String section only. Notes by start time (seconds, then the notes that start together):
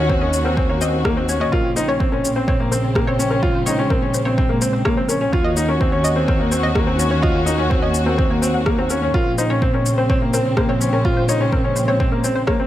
Already playing: D#3 A#3 C#4 F#4
1.53 C#3 C4
3.44 G#3
5.34 D#3 A#3 C#4 F#4
9.15 C#3 C4
11.05 G#3